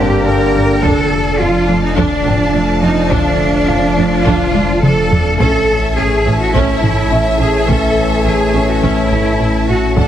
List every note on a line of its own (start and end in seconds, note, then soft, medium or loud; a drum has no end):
0.00 0.83 G1 medium
0.00 0.78 D3 medium
0.00 0.78 A#3 medium
0.00 0.79 A#3 medium
0.00 1.65 C4 soft
0.00 0.78 D4 medium
0.00 0.79 D4 medium
0.00 0.25 G4 medium
0.00 0.78 G4 medium
0.00 0.79 A#4 medium
0.00 1.65 C5 medium
0.00 0.78 D5 medium
0.00 0.79 G5 loud
0.00 0.79 A#5 medium
0.25 0.33 G2 medium
0.25 0.33 D4 medium
0.25 0.43 D4 medium
0.25 0.81 A#4 loud
0.54 0.62 G2 medium
0.54 0.71 A#3 medium
0.54 0.62 D4 medium
0.82 5.41 F1 medium
0.82 0.91 F2 medium
0.82 1.00 D3 medium
0.82 5.22 F3 medium
0.82 5.40 F3 medium
0.82 5.22 A3 medium
0.82 5.22 D4 medium
0.82 1.09 D4 medium
0.82 5.36 D4 medium
0.82 5.22 F4 medium
0.82 1.39 A4 loud
0.82 5.40 A4 medium
0.82 5.35 D5 medium
0.82 5.40 F5 medium
0.82 5.38 A5 medium
0.82 taiko loud
1.39 1.48 F2 medium
1.39 1.57 F3 medium
1.39 1.47 D4 medium
1.39 1.82 F4 medium
1.67 1.76 F2 medium
1.67 1.85 A3 medium
1.67 1.75 D4 medium
1.83 1.97 D#4 medium
1.96 2.05 F2 medium
1.96 2.14 D3 medium
1.96 2.23 D4 medium
1.96 2.81 D4 loud
1.96 3.64 A4 medium
1.96 taiko medium
2.24 2.33 F2 medium
2.24 2.32 D4 medium
2.24 2.42 D4 medium
2.24 3.93 G5 soft
2.24 taiko low-mid medium
2.54 2.62 F2 medium
2.54 2.71 A3 medium
2.54 2.62 D4 medium
2.82 2.91 F2 medium
2.82 2.99 F3 medium
2.82 2.90 D4 medium
2.82 3.10 D#4 medium
3.11 3.19 F2 medium
3.11 3.28 D3 loud
3.11 4.25 D4 loud
3.11 3.38 D4 medium
3.11 taiko loud
3.68 3.77 F2 medium
3.68 3.85 F3 medium
3.68 3.76 D4 medium
3.68 5.35 F4 medium
3.68 5.35 F5 medium
3.97 4.05 F2 medium
3.97 4.14 A3 medium
3.97 4.05 D4 medium
4.25 4.34 F2 medium
4.25 4.42 D3 medium
4.25 4.52 D4 medium
4.25 4.82 F4 loud
4.25 taiko medium
4.53 4.62 F2 medium
4.53 4.61 D4 medium
4.53 4.71 D4 medium
4.53 taiko high medium
4.82 4.91 F2 medium
4.82 5.00 A3 medium
4.82 4.90 D4 medium
4.82 5.38 A4 loud
4.82 taiko mid medium
5.11 5.19 F2 medium
5.11 5.28 F3 medium
5.11 5.19 D4 medium
5.11 taiko low medium
5.39 9.99 A1 medium
5.39 5.48 A1 medium
5.39 9.93 E3 medium
5.39 9.93 A3 medium
5.39 5.57 A3 medium
5.39 9.96 A3 medium
5.39 9.92 C#4 medium
5.39 5.66 C#4 medium
5.39 9.97 C#4 medium
5.39 5.96 A4 loud
5.39 9.93 C#5 medium
5.39 9.97 E5 medium
5.39 9.92 A5 medium
5.39 taiko medium
5.96 6.05 A1 medium
5.96 6.04 C#4 medium
5.96 6.14 C#4 medium
5.96 6.39 G#4 medium
6.25 6.34 A1 medium
6.25 6.33 C#4 medium
6.25 6.43 E4 medium
6.40 6.54 F#4 medium
6.53 6.62 A1 medium
6.53 6.71 A3 medium
6.53 6.81 C#4 medium
6.53 7.39 E4 medium
6.53 taiko medium
6.82 6.90 A1 medium
6.82 6.91 C#4 medium
6.82 6.99 A4 medium
6.82 taiko low-mid medium
7.11 7.19 A1 medium
7.11 7.19 C#4 medium
7.11 7.28 E4 medium
7.11 8.79 E4 soft
7.11 8.79 E5 medium
7.39 7.47 A1 soft
7.39 7.48 C#4 medium
7.39 7.57 C#4 medium
7.39 7.67 G#4 medium
7.68 7.76 A1 medium
7.68 7.85 A3 medium
7.68 7.95 C#4 medium
7.68 8.25 A4 medium
7.68 taiko medium
8.25 8.33 A1 medium
8.25 8.33 C#4 soft
8.25 8.43 C#4 medium
8.25 8.68 G#4 medium
8.54 8.62 A1 soft
8.54 10.08 C#4 soft
8.54 8.62 C#4 medium
8.54 8.71 E4 medium
8.54 10.08 C#5 medium
8.70 8.83 F#4 medium
8.82 8.90 A1 medium
8.82 9.00 A3 medium
8.82 9.09 C#4 medium
8.82 9.67 E4 medium
8.82 taiko medium
9.11 9.19 A1 medium
9.11 9.19 C#4 medium
9.11 9.29 A4 medium
9.11 taiko low-mid soft
9.39 9.47 A1 soft
9.39 9.48 C#4 medium
9.39 9.57 E4 medium
9.68 9.76 A1 soft
9.68 9.85 C#4 medium
9.68 9.77 C#4 soft
9.68 9.96 F#4 medium
9.97 10.08 D1 medium
9.97 10.05 D2 medium
9.97 10.08 D3 medium
9.97 10.08 A3 medium
9.97 10.08 D4 medium
9.97 10.08 A4 medium
9.97 10.08 F#5 medium
9.97 10.08 A5 medium
9.97 taiko medium